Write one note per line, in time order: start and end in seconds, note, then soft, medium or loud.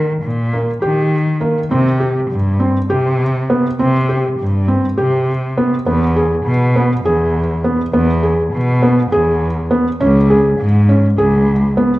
0.00 0.12 D#3 medium
0.00 0.26 A#4 medium
0.22 0.71 A#2 medium
0.53 0.70 A#3 medium
0.82 1.55 D#3 medium
0.82 1.15 G4 medium
1.41 1.57 A#3 medium
1.71 2.19 C3 medium
1.71 1.88 C4 medium
2.00 2.33 G4 medium
2.31 2.79 G2 medium
2.60 2.76 C4 medium
2.90 3.63 C3 medium
2.90 3.23 G4 medium
3.50 3.66 B3 medium
3.79 4.28 C3 medium
3.79 3.96 C4 medium
4.09 4.42 G4 medium
4.39 4.87 G2 medium
4.68 4.84 C4 medium
4.98 5.71 C3 medium
4.98 5.30 G4 medium
5.57 5.74 B3 medium
5.86 6.35 E2 medium
5.86 6.03 B3 medium
6.16 6.49 G#4 medium
6.45 6.94 B2 medium
6.76 6.92 B3 medium
7.05 7.77 E2 medium
7.05 7.38 G#4 medium
7.64 7.81 B3 medium
7.93 8.42 E2 medium
7.93 8.10 B3 medium
8.23 8.56 G#4 medium
8.53 9.01 B2 medium
8.82 8.99 B3 medium
9.12 9.84 E2 medium
9.12 9.45 G#4 medium
9.71 9.87 B3 medium
10.00 10.49 C#2 medium
10.00 10.17 C#4 medium
10.30 10.63 G#4 medium
10.59 11.08 G#2 medium
10.89 11.05 C#4 medium
11.18 11.91 C#2 medium
11.18 11.51 G#4 medium
11.77 11.93 B3 medium